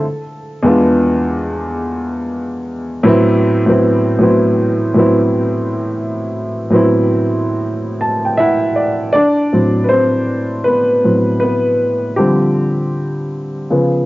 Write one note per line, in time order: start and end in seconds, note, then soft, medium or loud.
0.00 0.24 A4 medium
0.63 1.80 E2 medium
0.63 1.81 G#3 medium
0.63 1.82 B3 medium
0.63 1.82 D4 medium
0.68 1.83 F4 medium
3.03 3.51 A2 loud
3.03 3.51 F#3 medium
3.03 3.52 B3 loud
3.03 3.52 C4 medium
3.08 3.53 E4 loud
3.66 4.10 A2 medium
3.66 4.10 F#3 medium
3.66 4.11 B3 medium
3.66 4.12 C4 medium
3.71 4.12 E4 medium
4.18 4.82 A2 medium
4.18 4.83 F#3 medium
4.18 4.84 B3 medium
4.18 4.84 C4 medium
4.23 4.85 E4 medium
4.94 6.14 A2 medium
4.94 6.15 F#3 medium
4.94 6.16 B3 medium
4.94 6.16 C4 medium
4.99 6.17 E4 medium
6.70 7.88 A2 medium
6.70 7.89 F#3 medium
6.70 7.89 B3 medium
6.70 7.90 C4 medium
6.75 7.91 E4 medium
8.01 8.22 A5 medium
8.25 8.38 G5 medium
8.37 9.11 E4 medium
8.37 9.16 E5 loud
8.37 8.74 F#5 medium
8.76 9.11 D5 medium
9.13 9.81 D4 medium
9.13 9.86 D5 loud
9.53 11.03 A2 medium
9.53 11.03 F#3 medium
9.53 9.90 C4 medium
9.84 9.90 B4 medium
9.89 10.63 C4 medium
9.89 10.61 C5 medium
10.64 11.39 B3 medium
10.64 11.38 B4 medium
11.04 11.38 A2 soft
11.04 11.38 F#3 soft
11.04 11.39 C4 soft
11.40 12.15 B3 medium
11.40 12.19 B4 medium
12.16 13.28 D3 medium
12.16 13.28 F3 medium
12.16 13.28 G3 medium
12.16 13.28 C4 medium
12.16 13.27 G4 medium
13.70 14.06 C#3 medium
13.70 14.06 F3 medium
13.70 14.06 B3 medium